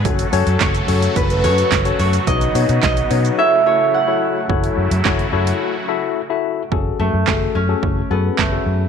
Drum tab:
HH |xxoxxxoxxxoxxxox|xxoxxxox--------|-x-x-x-x--------|----------------|
SH |xxxxxxxxxxxxxxxx|xxxxxxxx--------|----------------|----------------|
CP |----x-------x---|----x-----------|----x-----------|----x-------x---|
SD |----o-------o---|----o-----------|----o-----------|----o-------o---|
BD |o---o---o---o---|o---o-----------|o---o-----------|o---o---o---o---|